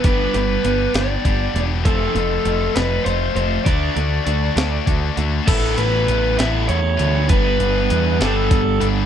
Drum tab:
CC |------|------|------|x-----|
HH |xxxxxx|xxxxxx|xxxxxx|xxxxxx|
SD |---o--|---o--|---o--|---o--|
BD |o---o-|o-----|o---o-|o-----|

CC |------|
HH |xxxxxx|
SD |---o--|
BD |o---o-|